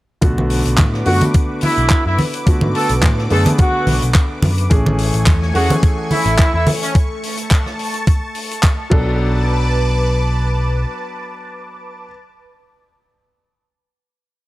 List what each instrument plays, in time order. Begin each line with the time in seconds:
0.21 picked electric bass B1, grand piano D3 A3 B3 F#4, analog synth pad B4 D6, kick, closed hi-hat
0.38 high conga
0.50 open hi-hat
0.65 picked electric bass B1, closed hi-hat
0.78 picked electric bass A2, kick, clap, closed hi-hat, high conga
0.94 cross-stick
1.06 picked electric bass F#2, grand piano D3 A3 B3 F#4, trumpet section F#4, open hi-hat
1.21 closed hi-hat, high conga
1.34 kick, closed hi-hat
1.61 trumpet section E4, open hi-hat, high conga
1.78 picked electric bass B1, closed hi-hat
1.89 kick, clap, closed hi-hat
2.06 picked electric bass F#2, trumpet section E4
2.18 open hi-hat, high conga
2.34 closed hi-hat
2.46 grand piano D3 A3 B3 F#4, muted picked electric bass stroke, kick, closed hi-hat
2.61 picked electric bass G#2, high conga
2.75 trumpet section A4, open hi-hat
2.89 picked electric bass B1, closed hi-hat
3.03 picked electric bass A2, kick, clap, closed hi-hat, high conga
3.18 cross-stick
3.30 picked electric bass F#2, grand piano D3 A3 B3 G#4, trumpet section A4, open hi-hat
3.46 closed hi-hat, high conga
3.58 trumpet section F#4, kick, closed hi-hat
3.87 picked electric bass B1, open hi-hat, high conga
4.02 picked electric bass B1, closed hi-hat
4.14 kick, clap, closed hi-hat
4.42 picked electric bass F#2, open hi-hat, high conga
4.58 closed hi-hat
4.70 picked electric bass A1, grand piano E3 A3 C#4 G#4, analog synth pad A3 G#5 C#6, kick, closed hi-hat
4.86 high conga
4.98 open hi-hat
5.14 picked electric bass A1, closed hi-hat
5.26 picked electric bass E2, kick, clap, closed hi-hat, high conga
5.42 cross-stick
5.54 picked electric bass E2, grand piano E3 A3 C#4 G#4, trumpet section F#4, open hi-hat
5.70 closed hi-hat, high conga
5.83 kick, closed hi-hat
6.11 trumpet section E4, open hi-hat, high conga
6.25 picked electric bass A1, closed hi-hat
6.39 kick, clap, closed hi-hat
6.54 picked electric bass E2, trumpet section E4
6.67 open hi-hat, high conga
6.82 trumpet section C#4, closed hi-hat
6.95 analog synth pad A5, kick, closed hi-hat
7.23 open hi-hat
7.37 closed hi-hat
7.51 kick, clap, closed hi-hat
7.66 cross-stick
7.79 open hi-hat
7.94 closed hi-hat
8.07 kick, closed hi-hat
8.35 open hi-hat
8.51 closed hi-hat
8.63 kick, clap, closed hi-hat
8.90 picked electric bass B1, grand piano F#3 B3 D4 A4, analog synth pad B4 A5 D6, kick, crash